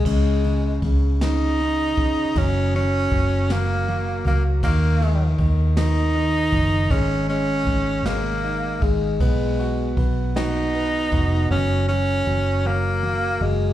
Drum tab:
CC |x-----|------|------|------|
RD |-xxxxx|xxxxxx|xxxxxx|xxxxxx|
SD |---o--|---o--|---o--|---o--|
BD |o-o--o|o-o---|o-o--o|o-o--o|

CC |------|------|
RD |xxxxxx|------|
SD |---o--|------|
BD |o-o--o|------|